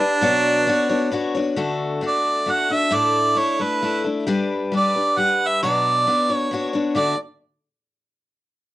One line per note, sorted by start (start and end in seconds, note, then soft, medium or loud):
0.00 1.11 D4 loud
0.00 0.21 D4 soft
0.00 0.22 G4 soft
0.00 0.21 B4 medium
0.21 0.66 B2 medium
0.21 0.67 F#3 medium
0.21 0.66 B3 medium
0.21 0.66 D4 medium
0.21 0.67 F#4 loud
0.21 0.67 C#5 loud
0.67 0.89 B3 medium
0.67 0.89 D4 medium
0.67 0.89 F#4 medium
0.67 0.88 C#5 medium
0.89 1.10 B3 soft
0.89 1.11 D4 medium
0.89 1.12 F#4 medium
0.89 1.12 C#5 medium
1.12 1.34 B3 medium
1.12 1.34 D4 medium
1.12 1.35 F#4 medium
1.12 1.33 C#5 medium
1.35 1.56 B3 soft
1.35 1.56 D4 medium
1.35 1.56 F#4 medium
1.35 1.57 C#5 medium
1.56 2.01 D3 medium
1.56 2.01 A3 medium
1.56 2.02 D4 medium
1.56 2.02 F#4 medium
1.56 2.03 A4 loud
2.01 2.45 A3 medium
2.01 2.47 D4 medium
2.01 2.47 F#4 medium
2.01 2.48 A4 medium
2.08 2.53 D5 medium
2.46 2.69 A3 medium
2.46 2.69 D4 medium
2.46 2.69 F#4 medium
2.46 2.68 A4 medium
2.51 2.74 F#5 loud
2.70 2.90 D4 soft
2.70 2.91 F#4 soft
2.70 2.91 A4 soft
2.70 2.96 E5 loud
2.91 3.36 A2 medium
2.91 3.36 D3 medium
2.91 3.34 A3 medium
2.91 3.36 D4 medium
2.91 3.35 E4 medium
2.91 3.37 A4 medium
2.95 3.40 D5 loud
3.35 3.58 A3 medium
3.35 3.59 D4 medium
3.35 3.59 E4 medium
3.35 3.58 A4 medium
3.35 3.65 C#5 medium
3.59 3.81 A3 soft
3.59 3.82 D4 soft
3.59 3.82 E4 soft
3.59 3.82 A4 soft
3.59 4.06 B4 medium
3.82 4.05 A3 medium
3.82 4.05 D4 medium
3.82 4.03 E4 medium
3.82 4.03 A4 medium
4.04 4.26 A3 soft
4.04 4.26 D4 soft
4.04 4.27 E4 soft
4.04 4.27 A4 medium
4.26 4.70 G3 medium
4.26 4.73 D4 loud
4.26 4.73 G4 medium
4.26 4.74 B4 loud
4.72 4.94 G3 medium
4.72 4.95 D4 medium
4.72 4.95 G4 medium
4.72 4.93 B4 medium
4.77 5.20 D5 medium
4.94 5.17 D4 soft
4.94 5.17 G4 soft
4.94 5.17 B4 soft
5.17 5.62 G3 medium
5.17 5.63 D4 medium
5.17 5.63 G4 medium
5.17 5.63 B4 medium
5.17 5.49 F#5 loud
5.47 5.62 E5 loud
5.62 6.07 B2 medium
5.62 6.07 F#3 medium
5.62 6.06 B3 medium
5.62 6.06 D4 medium
5.62 6.08 F#4 medium
5.62 6.34 D5 medium
6.07 6.29 B3 medium
6.07 6.30 D4 medium
6.07 6.29 F#4 medium
6.07 6.28 C#5 medium
6.29 6.50 B3 soft
6.29 6.51 D4 soft
6.29 6.52 F#4 medium
6.29 6.52 C#5 medium
6.34 6.71 C#5 medium
6.51 6.74 B3 medium
6.51 6.74 D4 medium
6.51 6.72 F#4 medium
6.51 6.72 C#5 medium
6.73 6.95 B3 soft
6.73 6.95 D4 medium
6.73 6.95 F#4 medium
6.73 6.96 C#5 medium
6.95 7.13 D3 medium
6.95 7.14 A3 medium
6.95 7.14 D4 medium
6.95 7.14 F#4 medium
6.95 7.16 D5 medium
6.95 7.15 D5 medium